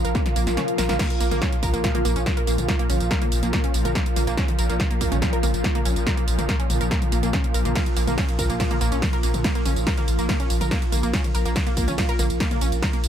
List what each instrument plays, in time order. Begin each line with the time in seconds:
Already playing: synth drone A#2 F3, ambient pad F4 A#4 F5
0.05 sub bass A#1, synth arpeggio sound A#4, closed hi-hat, tambourine
0.15 synth arpeggio sound A#3, kick, snare, closed hi-hat, tambourine
0.26 snare, closed hi-hat, mid tom
0.36 sub bass A#1, synth arpeggio sound A#3, open hi-hat, tambourine
0.47 sub bass A#1, snare, closed hi-hat, tambourine
0.57 synth arpeggio sound C#4, snare, closed hi-hat, mid tom, tambourine
0.68 closed hi-hat
0.78 sub bass A#1, synth arpeggio sound A#4, snare, open hi-hat, tambourine
0.89 sub bass A#1, synth arpeggio sound A#3, snare, closed hi-hat, mid tom, tambourine
0.99 synth drone A#2 F3, synth arpeggio sound A#3, kick, snare, closed hi-hat, mid tom, crash, tambourine
1.10 closed hi-hat
1.21 sub bass A#1, synth arpeggio sound A#3, open hi-hat, tambourine
1.31 sub bass A#1, synth arpeggio sound A#3, closed hi-hat, mid tom, tambourine
1.42 synth arpeggio sound C#4, kick, snare, closed hi-hat, tambourine
1.53 closed hi-hat
1.63 sub bass A#1, synth arpeggio sound A#4, kick, open hi-hat, mid tom, tambourine
1.74 sub bass A#1, synth arpeggio sound A#3, closed hi-hat, tambourine
1.84 kick, snare, closed hi-hat, tambourine
1.95 synth arpeggio sound A#3, closed hi-hat, mid tom
2.05 sub bass A#1, synth arpeggio sound A#3, open hi-hat, tambourine
2.16 sub bass A#1, synth arpeggio sound C#4, closed hi-hat, tambourine
2.26 kick, snare, closed hi-hat, mid tom, tambourine
2.37 synth arpeggio sound A#4, closed hi-hat
2.47 sub bass A#1, synth arpeggio sound A#3, open hi-hat, tambourine
2.58 sub bass A#1, closed hi-hat, mid tom, tambourine
2.68 synth arpeggio sound A#3, kick, snare, closed hi-hat, tambourine
2.79 synth arpeggio sound A#3, closed hi-hat
2.90 sub bass A#1, synth arpeggio sound C#4, open hi-hat, mid tom, tambourine
3.00 sub bass A#1, closed hi-hat, tambourine
3.11 synth arpeggio sound A#4, kick, snare, closed hi-hat, tambourine
3.22 synth arpeggio sound A#3, closed hi-hat, mid tom
3.32 sub bass A#1, open hi-hat, tambourine
3.43 sub bass A#1, synth arpeggio sound A#3, closed hi-hat, tambourine
3.53 synth arpeggio sound A#3, kick, snare, closed hi-hat, mid tom, tambourine
3.64 synth arpeggio sound C#4, closed hi-hat
3.74 sub bass A#1, open hi-hat, tambourine
3.85 sub bass A#1, synth arpeggio sound A#4, closed hi-hat, mid tom, tambourine
3.95 synth arpeggio sound A#3, kick, snare, closed hi-hat, tambourine
4.06 closed hi-hat
4.16 sub bass A#1, synth arpeggio sound A#3, open hi-hat, mid tom, tambourine
4.27 sub bass A#1, synth arpeggio sound A#3, closed hi-hat, tambourine
4.37 synth arpeggio sound C#4, kick, snare, closed hi-hat, tambourine
4.48 closed hi-hat, mid tom
4.59 sub bass A#1, synth arpeggio sound A#4, open hi-hat, tambourine
4.69 sub bass A#1, synth arpeggio sound A#3, closed hi-hat, tambourine
4.80 kick, snare, closed hi-hat, mid tom, tambourine
4.91 synth arpeggio sound A#3, closed hi-hat
5.01 sub bass A#1, synth arpeggio sound A#3, kick, open hi-hat, tambourine
5.12 sub bass A#1, synth arpeggio sound C#4, closed hi-hat, mid tom, tambourine
5.22 kick, snare, closed hi-hat, tambourine
5.33 synth arpeggio sound A#4, closed hi-hat
5.43 sub bass A#1, synth arpeggio sound A#3, open hi-hat, mid tom, tambourine
5.54 sub bass A#1, closed hi-hat, tambourine
5.64 synth arpeggio sound A#3, kick, snare, closed hi-hat, tambourine
5.75 synth arpeggio sound A#3, closed hi-hat, mid tom
5.85 sub bass A#1, synth arpeggio sound C#4, open hi-hat, tambourine
5.96 sub bass A#1, closed hi-hat, tambourine
6.06 synth arpeggio sound A#4, kick, snare, closed hi-hat, mid tom, tambourine
6.17 synth arpeggio sound A#3, closed hi-hat
6.28 sub bass A#1, open hi-hat, tambourine
6.38 sub bass A#1, synth arpeggio sound A#3, closed hi-hat, mid tom, tambourine
6.49 synth arpeggio sound A#3, kick, snare, closed hi-hat, tambourine
6.60 synth arpeggio sound C#4, closed hi-hat
6.70 sub bass A#1, open hi-hat, mid tom, tambourine
6.81 sub bass A#1, synth arpeggio sound A#4, closed hi-hat, tambourine
6.91 synth arpeggio sound A#3, kick, snare, closed hi-hat, tambourine
7.02 closed hi-hat, mid tom
7.12 sub bass A#1, synth arpeggio sound A#3, open hi-hat, tambourine
7.23 sub bass A#1, synth arpeggio sound A#3, closed hi-hat, tambourine
7.33 synth arpeggio sound C#4, kick, snare, closed hi-hat, mid tom, tambourine
7.44 closed hi-hat
7.54 sub bass A#1, synth arpeggio sound A#4, open hi-hat, tambourine
7.65 sub bass A#1, synth arpeggio sound A#3, closed hi-hat, mid tom, tambourine
7.75 synth arpeggio sound A#3, kick, snare, closed hi-hat, mid tom, ride, tambourine
7.86 closed hi-hat
7.97 sub bass A#1, synth arpeggio sound A#3, open hi-hat, tambourine
8.07 sub bass A#1, synth arpeggio sound A#3, closed hi-hat, mid tom, tambourine
8.18 synth arpeggio sound C#4, kick, snare, closed hi-hat, ride, tambourine
8.29 closed hi-hat
8.39 sub bass A#1, synth arpeggio sound A#4, kick, open hi-hat, mid tom, tambourine
8.50 sub bass A#1, synth arpeggio sound A#3, closed hi-hat, tambourine
8.60 kick, snare, closed hi-hat, ride, tambourine
8.71 synth arpeggio sound A#3, closed hi-hat, mid tom
8.81 sub bass A#1, synth arpeggio sound A#3, open hi-hat, tambourine
8.92 sub bass A#1, synth arpeggio sound C#4, closed hi-hat, tambourine
9.02 kick, snare, closed hi-hat, mid tom, ride, tambourine
9.13 synth arpeggio sound A#4, closed hi-hat
9.23 sub bass A#1, synth arpeggio sound A#3, open hi-hat, tambourine
9.34 sub bass A#1, closed hi-hat, mid tom, tambourine
9.44 synth arpeggio sound A#3, kick, snare, closed hi-hat, ride, tambourine
9.55 synth arpeggio sound A#3, closed hi-hat
9.66 sub bass A#1, synth arpeggio sound C#4, open hi-hat, mid tom, tambourine
9.76 sub bass A#1, closed hi-hat, tambourine
9.87 synth arpeggio sound A#4, kick, snare, closed hi-hat, ride, tambourine
9.98 synth arpeggio sound A#3, closed hi-hat, mid tom
10.08 sub bass A#1, open hi-hat, tambourine
10.19 sub bass A#1, synth arpeggio sound A#3, closed hi-hat, tambourine
10.29 synth arpeggio sound A#3, kick, snare, closed hi-hat, mid tom, ride, tambourine
10.40 synth arpeggio sound C#4, closed hi-hat
10.50 sub bass A#1, open hi-hat, tambourine
10.61 sub bass A#1, synth arpeggio sound A#4, closed hi-hat, mid tom, tambourine
10.71 synth arpeggio sound A#3, kick, snare, closed hi-hat, ride, tambourine
10.82 closed hi-hat
10.92 sub bass A#1, synth arpeggio sound A#3, open hi-hat, mid tom, tambourine
11.03 sub bass A#1, synth arpeggio sound A#3, closed hi-hat, tambourine
11.13 synth arpeggio sound C#4, kick, snare, closed hi-hat, ride, tambourine
11.24 closed hi-hat, mid tom
11.35 sub bass A#1, synth arpeggio sound A#4, open hi-hat, tambourine
11.46 sub bass A#1, synth arpeggio sound A#3, closed hi-hat, tambourine
11.56 kick, snare, closed hi-hat, mid tom, ride, tambourine
11.67 synth arpeggio sound A#3, closed hi-hat
11.77 sub bass A#1, synth arpeggio sound A#3, kick, open hi-hat, tambourine
11.88 sub bass A#1, synth arpeggio sound C#4, closed hi-hat, mid tom, tambourine
11.98 kick, snare, closed hi-hat, ride, tambourine
12.09 synth arpeggio sound A#4, closed hi-hat
12.19 sub bass A#1, synth arpeggio sound A#3, open hi-hat, mid tom, tambourine
12.30 sub bass A#1, closed hi-hat, tambourine
12.40 synth arpeggio sound A#3, kick, snare, closed hi-hat, ride, tambourine
12.51 synth arpeggio sound A#3, closed hi-hat, mid tom
12.61 sub bass A#1, synth arpeggio sound C#4, open hi-hat, tambourine
12.72 sub bass A#1, closed hi-hat, tambourine
12.82 synth arpeggio sound A#4, kick, snare, closed hi-hat, mid tom, ride, tambourine
12.93 synth arpeggio sound A#3, closed hi-hat
13.04 sub bass A#1, open hi-hat, tambourine